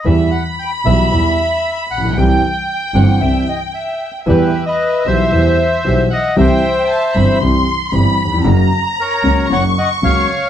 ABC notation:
X:1
M:4/4
L:1/16
Q:1/4=114
K:Em
V:1 name="Violin section"
b16 | g16 | e16 | g4 a2 b2 c'4 b4 |
^a8 ^c'8 |]
V:2 name="Bandoneon"
e2 f2 g2 e8 f2 | g6 f2 e2 ^d2 e3 z | [GB]3 [B^d]3 [ce]8 [df]2 | [ce]8 z8 |
z4 [^A^c]4 [cf]2 [^df]2 [c=f]4 |]
V:3 name="Grand piano" clef=bass
[E,,E,G,B,G]2 z4 [B,,,B,,E,G,B,G]2 [E,,E,G,B,G]2 z4 z/2 A,,,/2 ^A,,,/2 B,,,/2 | [C,,C,E,G,CG]2 z4 [G,,,G,,E,G,CG]2 [C,,C,E,G,CG]2 z6 | [E,,E,G,B,G]2 z4 [B,,,B,,E,G,B,G]2 [E,,E,G,B,G]2 z2 [B,,,B,,E,G,B,G]2 z2 | [C,,C,E,G,CG]2 z4 [G,,,G,,E,G,CG]2 [C,,C,E,G,CG]2 z2 [G,,,G,,E,G,CG]2 z/2 ^D,,/2 E,,/2 =F,,/2 |
[F,,^C,F,^A,F]2 z4 [^C,,C,F,A,F]2 [F,,C,F,A,F]2 z2 [C,,C,F,A,F]2 z2 |]
V:4 name="Double bass" clef=bass
E,,2 z4 B,,,2 E,,2 z4 ^A,,,2 | C,,2 z4 G,,,2 C,,2 z6 | E,,2 z4 B,,,2 E,,2 z2 B,,,2 z2 | C,,2 z4 G,,,2 C,,2 z2 G,,,2 z2 |
F,,,2 z4 ^C,,2 F,,,2 z2 C,,2 z2 |]